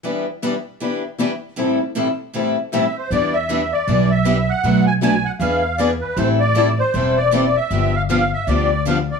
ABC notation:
X:1
M:4/4
L:1/16
Q:"Swing" 1/4=156
K:Em
V:1 name="Accordion"
z16 | z12 e2 c2 | d2 e4 d4 e4 f2- | f2 ^g2 g2 f2 =f4 d2 B2 |
c2 d4 c4 d4 e2- | e2 =f2 f2 e2 d4 f2 d2 |]
V:2 name="Steel-string acoustic guitar"
[E,G,DEB]2 z2 [E,G,DEB] z3 [E,G,DEB]2 z2 [E,G,DEB] z3 | [A,,E,G,CEA]2 z2 [A,,E,G,CEA] z3 [A,,E,G,CEA]2 z2 [A,,E,G,CEA] z3 | [E,G,DEB]2 z2 [E,G,DEB] z3 [E,G,DEB]2 z2 [E,G,DEB] z3 | [B,,F,A,DFB]2 z2 [B,,F,A,DFB] z3 [E,B,D^GB]2 z2 [E,B,DGB] z3 |
[E,G,CEA]2 z2 [E,G,CEA] z3 [E,G,CEA]2 z2 [E,G,CEA] z3 | [D,=F,B,DG]2 z2 [D,F,B,DG] z3 [D,F,B,DG]2 z2 [D,F,B,DG] z3 |]
V:3 name="Steel-string acoustic guitar"
[E,B,DG]2 z2 [E,B,DG] z3 [E,B,DG]2 z2 [E,B,DG] z3 | [A,,E,G,CEA]2 z2 [A,,E,G,CEA] z3 [A,,E,G,CEA]2 z2 [A,,E,G,CEA] z3 | [E,B,DG]2 z2 [E,B,DG] z3 [E,B,DG]2 z2 [E,B,DG] z3 | [B,,F,A,DF]2 z2 [B,,F,A,DF] z3 [E,B,D^G]2 z2 [E,B,DG] z3 |
[E,G,CEA]2 z2 [E,G,CEA] z3 [E,G,CEA]2 z2 [E,G,CEA] z3 | [D,=F,B,DG]2 z2 [D,F,B,DG] z3 [D,F,B,DG]2 z2 [D,F,B,DG] z3 |]
V:4 name="Upright bass" clef=bass
z16 | z16 | E,,8 B,,,8 | B,,,8 E,,8 |
A,,,8 E,,,8 | G,,,8 D,,8 |]